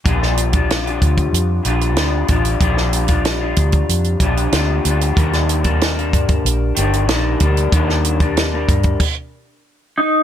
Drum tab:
CC |----------------|----------------|----------------|--------x-------|
HH |x-xxxxxxx-xxx-xx|x-xxx-xxxxxxx-xx|xxxxxxxxx-xxx-xx|x-xxx-xx--------|
SD |-o--o-------o---|-o--o-------o---|-o--o-------o---|-o--o-----------|
BD |o--o--oo------o-|o--o--oo--o-----|o--o--oo------o-|o--o--ooo-------|